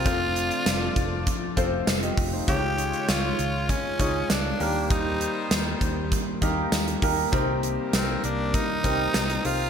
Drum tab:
HH |x-xxx-x-x-x-xxo-|x-xxx-x-x-x-x-o-|x-x-x-x-x-x-xxo-|x-x-x-x-x-x-xxo-|
TB |----x-------x---|----x-------x---|----x-------x---|----x-------x---|
SD |----o-------o---|----o-------o---|----o-------o---|----o-------o---|
BD |o-----o-o-o---o-|o-------o-o-----|o-----o-o-o---o-|o-------o-o-----|